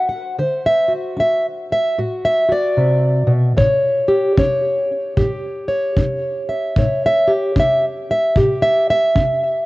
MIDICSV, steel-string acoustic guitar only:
0, 0, Header, 1, 2, 480
1, 0, Start_track
1, 0, Tempo, 797130
1, 232, Time_signature, 4, 2, 24, 8
1, 5815, End_track
2, 0, Start_track
2, 0, Title_t, "Steel-string acoustic guitar"
2, 0, Program_c, 0, 25
2, 0, Note_on_c, 0, 62, 67
2, 0, Note_on_c, 0, 66, 48
2, 54, Note_on_c, 0, 78, 49
2, 194, Note_off_c, 0, 62, 0
2, 212, Note_off_c, 0, 78, 0
2, 213, Note_off_c, 0, 66, 0
2, 232, Note_on_c, 0, 50, 74
2, 235, Note_on_c, 0, 72, 56
2, 398, Note_on_c, 0, 76, 96
2, 531, Note_on_c, 0, 66, 45
2, 555, Note_off_c, 0, 76, 0
2, 676, Note_off_c, 0, 50, 0
2, 703, Note_on_c, 0, 62, 69
2, 723, Note_on_c, 0, 76, 82
2, 878, Note_off_c, 0, 76, 0
2, 1038, Note_on_c, 0, 76, 92
2, 1151, Note_off_c, 0, 62, 0
2, 1189, Note_off_c, 0, 66, 0
2, 1194, Note_on_c, 0, 45, 62
2, 1195, Note_off_c, 0, 76, 0
2, 1197, Note_on_c, 0, 66, 50
2, 1355, Note_on_c, 0, 76, 93
2, 1490, Note_off_c, 0, 66, 0
2, 1498, Note_on_c, 0, 66, 45
2, 1514, Note_off_c, 0, 72, 0
2, 1514, Note_off_c, 0, 76, 0
2, 1517, Note_on_c, 0, 74, 89
2, 1637, Note_off_c, 0, 45, 0
2, 1669, Note_on_c, 0, 48, 67
2, 1966, Note_off_c, 0, 48, 0
2, 1968, Note_on_c, 0, 47, 67
2, 1995, Note_off_c, 0, 74, 0
2, 2134, Note_off_c, 0, 66, 0
2, 2145, Note_off_c, 0, 47, 0
2, 2147, Note_on_c, 0, 45, 71
2, 2152, Note_on_c, 0, 73, 65
2, 2458, Note_on_c, 0, 67, 60
2, 2594, Note_off_c, 0, 45, 0
2, 2635, Note_on_c, 0, 61, 69
2, 2638, Note_off_c, 0, 73, 0
2, 2640, Note_on_c, 0, 73, 65
2, 3078, Note_off_c, 0, 61, 0
2, 3111, Note_off_c, 0, 67, 0
2, 3113, Note_on_c, 0, 45, 67
2, 3114, Note_on_c, 0, 67, 61
2, 3415, Note_off_c, 0, 73, 0
2, 3421, Note_on_c, 0, 73, 58
2, 3557, Note_off_c, 0, 45, 0
2, 3598, Note_on_c, 0, 61, 66
2, 3908, Note_on_c, 0, 76, 68
2, 4039, Note_off_c, 0, 61, 0
2, 4051, Note_off_c, 0, 67, 0
2, 4057, Note_off_c, 0, 73, 0
2, 4078, Note_on_c, 0, 45, 78
2, 4085, Note_on_c, 0, 73, 50
2, 4248, Note_off_c, 0, 76, 0
2, 4251, Note_on_c, 0, 76, 113
2, 4381, Note_on_c, 0, 67, 50
2, 4402, Note_off_c, 0, 76, 0
2, 4520, Note_off_c, 0, 45, 0
2, 4554, Note_on_c, 0, 61, 66
2, 4574, Note_on_c, 0, 76, 85
2, 4724, Note_off_c, 0, 76, 0
2, 4883, Note_on_c, 0, 76, 94
2, 4998, Note_off_c, 0, 61, 0
2, 5034, Note_off_c, 0, 67, 0
2, 5036, Note_on_c, 0, 45, 64
2, 5038, Note_off_c, 0, 76, 0
2, 5041, Note_on_c, 0, 67, 47
2, 5192, Note_on_c, 0, 76, 104
2, 5353, Note_off_c, 0, 76, 0
2, 5360, Note_on_c, 0, 76, 106
2, 5479, Note_off_c, 0, 45, 0
2, 5512, Note_on_c, 0, 61, 66
2, 5815, Note_off_c, 0, 61, 0
2, 5815, Note_off_c, 0, 67, 0
2, 5815, Note_off_c, 0, 73, 0
2, 5815, Note_off_c, 0, 76, 0
2, 5815, End_track
0, 0, End_of_file